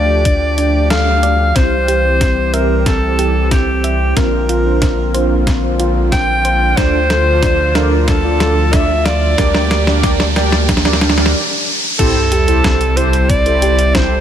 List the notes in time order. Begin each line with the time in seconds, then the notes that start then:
Already playing: D2 F3 A3 D4 G4 D5
0.25 D4, kick, closed hi-hat
0.58 D4, closed hi-hat
0.90 A4 F5, snare, closed hi-hat
1.23 D5, closed hi-hat
1.56 C2 E3 G3 C4 E4 G4 C5, kick, snare, closed hi-hat, riser
1.88 G4, closed hi-hat
2.05 C4 E4 G4 C5
2.21 C4, kick, snare, closed hi-hat
2.53 C4 E4 G4 A#4 C5 E5, closed hi-hat
2.86 C4 A4, kick, snare, closed hi-hat
3.02 C4 E4 G4 C5
3.19 G4, closed hi-hat
3.51 C4 E4 G4 C5, kick, snare, closed hi-hat
3.84 E5, closed hi-hat
4.16 A#1 D3 A#3 C4 D4 F4 A#4 C5, kick, snare, closed hi-hat
4.49 F4, closed hi-hat
4.65 D4 F4 A#4 C5
4.82 C4, kick, snare, closed hi-hat
5.14 D4 F4 A#4 C5, closed hi-hat
5.47 C4, kick, snare, closed hi-hat
5.63 D4 F4 A#4 C5
5.80 F4, closed hi-hat
6.12 C4 D4 F4 A#4 C5 G5, kick, snare, closed hi-hat
6.45 C5, closed hi-hat
6.77 D2 F3 D4 F4 A4 C5 D5, kick, snare, closed hi-hat
7.10 A4, snare, closed hi-hat
7.26 D4 F4 A4 D5
7.43 D4, kick, snare, closed hi-hat
7.75 D4 F4 A4 A#4 D5 F5, snare, closed hi-hat
8.08 D4 A4, kick, snare, closed hi-hat
8.24 D4 F4 A4 D5
8.40 A4, snare, closed hi-hat
8.73 D4 F4 A4 D5 E5, kick, snare, closed hi-hat
9.06 D5 F5, snare, closed hi-hat
9.38 D2 G3 A#3 D4 G4 A#4 D5, kick, snare, closed hi-hat
9.55 snare
9.71 A#4, snare, closed hi-hat
9.87 D4 G4 A#4 D5, snare
10.03 D4, kick, snare, closed hi-hat
10.20 snare
10.36 D4 G4 A#4 D5 G5, snare, closed hi-hat
10.52 snare
10.69 D4, kick, snare, closed hi-hat
10.77 snare
10.85 D4 G4 A#4 D5, snare
10.93 snare
11.01 D4, snare, closed hi-hat
11.10 snare
11.17 D4 G4 A#4 D5, snare
11.26 snare
11.99 C2 C3 G3 C4 E4 G4 A4 C5, kick, closed hi-hat, crash, sub drop
12.32 G4, closed hi-hat
12.48 E4 G4 A4 C5, closed hi-hat
12.64 C4, kick, snare, closed hi-hat
12.81 closed hi-hat
12.97 E4 G4 A4 C5, closed hi-hat
13.13 closed hi-hat
13.29 C4 D5, kick, closed hi-hat
13.46 E4 G4 A4 C5, closed hi-hat
13.62 G4, closed hi-hat
13.79 closed hi-hat
13.95 C4 E4 G4 A4 C5, kick, snare, closed hi-hat